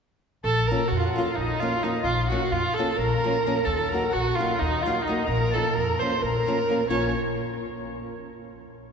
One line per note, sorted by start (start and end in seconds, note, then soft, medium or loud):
0.44 0.72 A#1 loud
0.44 0.68 A4 medium
0.44 0.67 A5 medium
0.67 0.82 F3 medium
0.67 0.89 A#4 medium
0.67 0.90 A#5 medium
0.71 0.82 A#3 soft
0.71 0.82 C#4 medium
0.71 0.82 F4 medium
0.88 1.06 F2 medium
0.88 0.99 F#4 medium
0.88 0.97 F#5 medium
0.97 1.02 F4 medium
0.97 1.13 F#4 medium
0.97 1.04 F5 medium
1.04 1.16 F#5 medium
1.14 1.28 F3 medium
1.14 1.28 A#3 medium
1.14 1.29 C#4 medium
1.14 1.37 F4 medium
1.14 1.37 F5 medium
1.18 1.29 F4 medium
1.36 1.52 A#1 medium
1.36 1.61 D#4 medium
1.40 1.62 D#5 medium
1.60 1.73 F3 medium
1.60 1.73 A#3 medium
1.60 1.74 C#4 medium
1.60 1.85 F4 medium
1.60 1.74 F4 medium
1.60 1.83 F5 medium
1.82 1.95 F3 medium
1.82 1.95 A#3 medium
1.82 1.95 C#4 soft
1.82 2.02 D#4 medium
1.82 1.96 F4 medium
1.82 2.04 D#5 medium
2.03 2.32 A#1 medium
2.03 2.27 F4 medium
2.03 2.27 F5 medium
2.29 2.42 F3 medium
2.29 2.43 A#3 soft
2.29 2.43 C#4 medium
2.29 2.43 F4 medium
2.29 2.53 F#4 medium
2.29 2.50 F#5 medium
2.51 2.67 F2 medium
2.51 2.76 F4 medium
2.51 2.76 F5 medium
2.74 2.89 F3 medium
2.74 2.99 A4 medium
2.74 2.99 A5 medium
2.79 2.90 A#3 medium
2.79 2.90 C#4 medium
2.79 2.91 F4 medium
2.97 3.13 A#1 medium
2.97 3.66 A#4 medium
2.97 3.65 A#5 medium
3.24 3.35 F3 medium
3.24 3.36 A#3 medium
3.24 3.36 C#4 medium
3.24 3.37 F4 medium
3.46 3.57 F3 medium
3.46 3.58 A#3 medium
3.46 3.58 C#4 medium
3.46 3.58 F4 medium
3.63 3.95 D#2 loud
3.63 3.91 A4 medium
3.63 3.90 A5 medium
3.88 4.14 A#4 medium
3.88 4.11 A#5 medium
3.92 4.04 F#3 medium
3.92 4.04 A#3 soft
3.92 4.04 D#4 soft
3.92 4.05 F#4 medium
4.09 4.37 F#4 medium
4.09 4.36 F#5 medium
4.15 4.29 A#1 medium
4.35 4.51 F#3 medium
4.35 4.51 A#3 medium
4.35 4.61 F4 medium
4.35 4.60 F5 medium
4.40 4.52 D#4 soft
4.40 4.52 F#4 medium
4.59 4.75 D#2 medium
4.59 4.84 D#4 medium
4.59 4.83 D#5 medium
4.81 5.04 F4 medium
4.81 5.04 F5 medium
4.85 4.97 F#3 medium
4.85 4.97 A#3 medium
4.85 4.97 D#4 medium
4.85 4.98 F#4 medium
5.03 5.26 D#4 medium
5.03 5.27 D#5 medium
5.08 5.19 F#3 medium
5.08 5.20 A#3 medium
5.08 5.19 D#4 medium
5.08 5.20 F#4 medium
5.25 5.56 A#1 medium
5.25 5.55 A#4 loud
5.25 5.51 A#5 medium
5.50 5.65 F3 medium
5.50 5.75 A4 medium
5.50 5.73 A5 medium
5.54 5.66 A#3 medium
5.54 5.66 C#4 medium
5.54 5.66 F4 medium
5.73 5.91 F2 medium
5.73 6.01 A#4 medium
5.73 6.00 A#5 medium
5.99 6.12 F3 medium
5.99 6.13 A#3 soft
5.99 6.13 C#4 medium
5.99 6.24 C5 medium
5.99 6.21 C6 medium
6.03 6.13 F4 medium
6.22 6.36 A#1 medium
6.22 6.89 A#4 medium
6.22 6.88 A#5 medium
6.47 6.58 F3 medium
6.47 6.58 A#3 medium
6.47 6.59 C#4 medium
6.47 6.59 F4 medium
6.69 6.80 F3 medium
6.69 6.80 A#3 medium
6.69 6.80 C#4 soft
6.69 6.81 F4 medium
6.88 7.12 A#1 medium
6.88 7.13 F3 medium
6.88 7.12 A#3 medium
6.88 7.12 C#4 medium
6.88 7.13 F4 medium
6.88 7.12 C#5 medium